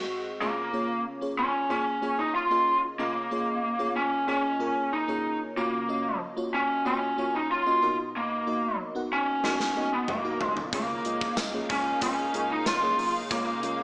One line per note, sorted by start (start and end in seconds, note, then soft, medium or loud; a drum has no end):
0.00 0.43 G#2 loud
0.00 0.39 G#3 medium
0.00 0.38 C4 medium
0.00 0.42 C4 loud
0.00 0.39 F#4 medium
0.00 0.43 F#4 loud
0.00 0.41 G#4 loud
0.00 0.42 D#5 medium
0.40 1.34 C#3 medium
0.40 0.68 A#3 medium
0.40 1.02 A#3 loud
0.40 0.69 C#4 medium
0.40 0.69 F4 medium
0.40 0.69 G#4 medium
0.40 0.69 C#5 medium
0.73 1.15 A#3 medium
0.73 1.15 C#4 medium
0.73 1.15 F4 medium
0.73 1.15 G#4 medium
0.73 1.15 C#5 medium
1.21 1.63 A#3 medium
1.21 1.63 C#4 medium
1.21 1.63 F4 medium
1.21 1.63 G#4 medium
1.21 1.64 C#5 medium
1.39 1.70 C#4 loud
1.69 1.97 A#3 medium
1.69 1.98 C#4 medium
1.69 2.20 C#4 loud
1.69 1.98 F4 medium
1.69 1.98 G#4 medium
1.69 1.98 C#5 medium
2.02 2.44 A#3 medium
2.02 2.44 C#4 medium
2.02 2.44 F4 medium
2.02 2.44 G#4 medium
2.02 2.44 C#5 medium
2.19 2.35 D#4 loud
2.35 2.80 F4 loud
2.50 2.92 A#3 medium
2.50 2.92 C#4 medium
2.50 2.92 F4 medium
2.50 2.92 G#4 medium
2.50 2.93 D#5 medium
2.99 3.92 C#3 medium
2.99 3.26 A#3 medium
2.99 3.96 A#3 loud
2.99 3.27 C#4 medium
2.99 3.27 F4 medium
2.99 3.27 G#4 medium
2.99 3.27 D#5 medium
3.31 3.73 A#3 medium
3.31 3.73 C#4 medium
3.31 3.73 F4 medium
3.31 3.73 G#4 medium
3.31 3.73 C#5 medium
3.79 4.21 A#3 medium
3.79 4.21 C#4 medium
3.79 4.21 F4 medium
3.79 4.21 G#4 medium
3.79 4.21 C#5 medium
3.96 4.27 C#4 medium
4.28 4.55 A#3 medium
4.28 4.56 C#4 medium
4.28 4.95 C#4 loud
4.28 4.56 F4 medium
4.28 4.56 G#4 medium
4.28 4.56 C#5 medium
4.59 5.01 A#3 medium
4.59 5.02 C#4 medium
4.59 5.02 F4 medium
4.59 5.02 G#4 medium
4.59 5.02 A#4 medium
4.93 5.38 D#4 loud
5.08 5.50 A#3 medium
5.08 5.50 C#4 medium
5.08 5.50 F4 medium
5.08 5.50 G#4 medium
5.08 5.50 C#5 medium
5.56 6.50 C#3 medium
5.56 5.84 A#3 medium
5.56 6.18 A#3 medium
5.56 5.85 C#4 medium
5.56 5.85 F4 medium
5.56 5.85 F#4 medium
5.56 5.85 C#5 medium
5.89 6.31 A#3 medium
5.89 6.31 C#4 medium
5.89 6.31 F4 medium
5.89 6.31 F#4 medium
5.89 6.31 D#5 medium
6.37 6.79 A#3 medium
6.37 6.79 C#4 medium
6.37 6.79 F4 medium
6.37 6.79 F#4 medium
6.37 6.79 C#5 medium
6.54 6.85 C#4 medium
6.85 7.13 A#3 medium
6.85 7.13 C#4 medium
6.85 7.36 C#4 loud
6.85 7.13 F4 medium
6.85 7.14 F#4 medium
6.85 7.14 C#5 medium
7.17 7.59 A#3 medium
7.17 7.60 C#4 medium
7.17 7.60 F4 medium
7.17 7.60 F#4 medium
7.17 7.60 C#5 medium
7.35 7.51 D#4 loud
7.51 7.96 F4 loud
7.66 7.82 A#3 medium
7.66 7.82 C#4 medium
7.66 7.83 F4 medium
7.66 7.81 F#4 medium
7.66 7.82 D#5 medium
7.82 8.75 B2 medium
7.82 8.38 B3 medium
7.82 8.38 D#4 medium
7.82 8.38 F#4 medium
7.82 8.38 A#4 medium
7.82 8.38 D#5 medium
8.16 8.76 A#3 medium
8.47 8.89 A#3 medium
8.47 8.89 D#4 medium
8.47 8.89 F#4 medium
8.47 8.89 A#4 medium
8.47 8.89 D#5 medium
8.95 9.37 B3 medium
8.95 9.37 D#4 medium
8.95 9.37 F#4 medium
8.95 9.37 A#4 medium
8.95 9.38 F#5 medium
9.13 9.44 C#4 loud
9.43 9.71 B3 medium
9.43 9.93 C#4 loud
9.43 9.72 D#4 medium
9.43 9.72 F#4 medium
9.43 9.72 A#4 medium
9.43 9.72 D#5 medium
9.43 snare medium
9.60 snare medium
9.76 10.18 B3 medium
9.76 10.18 D#4 medium
9.76 10.18 F#4 medium
9.76 10.18 A#4 medium
9.76 10.18 D#5 medium
9.93 10.09 B3 medium
10.08 10.54 A#3 medium
10.08 mid tom medium
10.24 10.66 B2 medium
10.24 10.66 D#4 medium
10.24 10.66 F#4 medium
10.24 10.67 A#4 medium
10.24 10.67 F5 medium
10.41 floor tom loud
10.57 floor tom loud
10.73 10.96 C#2 loud
10.73 13.83 C#3 medium
10.73 11.66 C#3 medium
10.73 13.83 G#3 medium
10.73 11.01 A#3 medium
10.73 13.83 A#3 medium
10.73 11.34 A#3 medium
10.73 11.01 C#4 medium
10.73 13.83 D#4 medium
10.73 11.01 F4 medium
10.73 11.01 G#4 medium
10.73 11.01 C#5 medium
10.73 13.83 F5 medium
10.73 kick loud
10.73 closed hi-hat loud
11.05 11.28 C#2 medium
11.05 11.47 A#3 medium
11.05 11.47 C#4 medium
11.05 11.47 F4 medium
11.05 11.47 G#4 medium
11.05 11.47 D#5 medium
11.05 closed hi-hat medium
11.21 kick loud
11.37 11.61 C#2 loud
11.37 snare loud
11.37 closed hi-hat medium
11.37 tambourine medium
11.53 11.95 A#3 medium
11.53 11.95 C#4 medium
11.53 11.95 F4 medium
11.53 11.96 G#4 medium
11.53 11.96 C#5 medium
11.70 11.93 C#2 loud
11.70 12.00 C#4 loud
11.70 kick medium
11.70 closed hi-hat medium
12.01 12.25 C#2 loud
12.01 12.29 A#3 medium
12.01 12.30 C#4 medium
12.01 12.52 C#4 loud
12.01 12.30 F4 medium
12.01 12.30 G#4 medium
12.01 12.30 C#5 medium
12.01 kick loud
12.01 closed hi-hat loud
12.34 12.58 C#2 loud
12.34 12.76 A#3 medium
12.34 12.76 C#4 medium
12.34 12.76 F4 medium
12.34 12.76 G#4 medium
12.34 12.76 D#5 medium
12.34 closed hi-hat medium
12.51 12.66 D#4 loud
12.66 12.90 C#2 loud
12.66 13.12 F4 loud
12.66 snare loud
12.66 closed hi-hat medium
12.66 tambourine medium
12.82 13.24 A#3 medium
12.82 13.24 C#4 medium
12.82 13.24 F4 medium
12.82 13.25 G#4 medium
12.82 13.25 C#5 medium
12.99 13.22 B1 loud
12.99 open hi-hat medium
13.31 13.54 C#2 loud
13.31 13.83 C#3 medium
13.31 13.59 A#3 medium
13.31 13.83 A#3 loud
13.31 13.59 C#4 medium
13.31 13.59 F4 medium
13.31 13.59 G#4 medium
13.31 13.59 C#5 medium
13.31 kick loud
13.31 closed hi-hat loud
13.63 13.83 C#2 medium
13.63 13.83 A#3 medium
13.63 13.83 C#4 medium
13.63 13.83 F4 medium
13.63 13.83 G#4 medium
13.63 13.83 C#5 medium
13.63 closed hi-hat medium